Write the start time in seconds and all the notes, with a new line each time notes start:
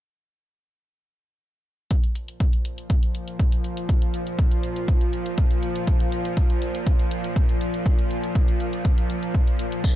1.91 A#2 F3, kick, closed hi-hat
2.04 closed hi-hat
2.15 closed hi-hat
2.28 closed hi-hat
2.40 kick, closed hi-hat
2.53 closed hi-hat
2.65 closed hi-hat
2.78 closed hi-hat
2.90 kick, closed hi-hat
3.03 closed hi-hat
3.15 closed hi-hat
3.28 closed hi-hat
3.39 kick, closed hi-hat
3.52 closed hi-hat
3.64 closed hi-hat
3.77 closed hi-hat
3.89 kick, closed hi-hat
4.02 closed hi-hat
4.14 closed hi-hat
4.27 closed hi-hat
4.39 kick, closed hi-hat
4.51 closed hi-hat
4.63 closed hi-hat
4.76 closed hi-hat
4.88 kick, closed hi-hat
5.01 closed hi-hat
5.13 closed hi-hat
5.26 closed hi-hat
5.38 kick, closed hi-hat
5.51 closed hi-hat
5.63 closed hi-hat
5.76 closed hi-hat
5.87 kick, closed hi-hat
6.00 closed hi-hat
6.12 closed hi-hat
6.25 closed hi-hat
6.37 kick, closed hi-hat
6.50 closed hi-hat
6.62 closed hi-hat
6.75 closed hi-hat
6.87 kick, closed hi-hat
6.99 closed hi-hat
7.11 closed hi-hat
7.24 closed hi-hat
7.36 kick, closed hi-hat
7.49 closed hi-hat
7.61 closed hi-hat
7.74 closed hi-hat
7.86 kick, closed hi-hat
7.99 closed hi-hat
8.11 closed hi-hat
8.23 closed hi-hat
8.35 kick, closed hi-hat
8.48 closed hi-hat
8.60 closed hi-hat
8.73 closed hi-hat
8.85 kick, closed hi-hat
8.98 closed hi-hat
9.10 closed hi-hat
9.23 closed hi-hat
9.35 kick, closed hi-hat
9.47 closed hi-hat
9.59 closed hi-hat
9.72 closed hi-hat
9.84 F4 A#4 C5, kick, closed hi-hat, tambourine